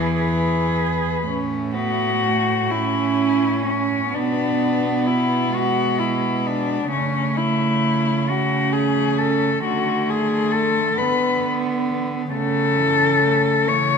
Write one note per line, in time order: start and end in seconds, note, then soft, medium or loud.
0.00 1.08 E2 medium
0.00 0.69 E3 medium
0.00 0.15 G#4 medium
0.00 0.15 B4 medium
0.17 1.23 G#4 medium
0.17 1.24 B4 medium
1.26 4.13 A2 medium
1.26 2.71 A3 medium
1.26 1.75 C#4 medium
1.73 2.23 B3 medium
1.73 2.72 F#4 medium
2.22 2.71 A3 medium
2.70 4.12 C#4 medium
2.70 3.66 E4 medium
3.66 4.16 C#4 medium
4.12 6.90 B2 medium
4.12 5.50 B3 medium
4.12 6.87 B3 medium
4.12 5.08 D4 medium
5.07 5.56 E4 medium
5.53 6.88 G#3 medium
5.53 6.01 F#4 medium
5.99 6.49 E4 medium
6.48 6.91 D4 medium
6.90 9.60 C#3 medium
6.90 8.26 A3 medium
6.90 8.31 A3 medium
6.90 7.38 C#4 medium
7.37 8.31 E4 medium
8.28 9.62 A3 soft
8.28 9.65 C#4 medium
8.28 8.74 F#4 medium
8.73 9.19 G#4 medium
9.18 9.63 A4 medium
9.64 10.97 D3 medium
9.64 10.97 A3 soft
9.64 11.03 A3 medium
9.64 10.11 F#4 medium
10.10 10.53 G#4 medium
10.51 10.99 A4 medium
10.98 12.30 D3 soft
10.98 12.29 B3 soft
10.98 12.31 B3 medium
10.98 11.44 B4 medium
12.32 13.51 C#3 medium
12.32 12.79 A3 soft
12.32 13.69 C#4 medium
12.32 13.70 A4 medium
12.78 13.23 E3 soft
13.21 13.68 A3 soft
13.66 13.98 C#3 medium
13.66 13.98 E3 soft
13.66 13.98 A3 medium
13.66 13.98 C#5 medium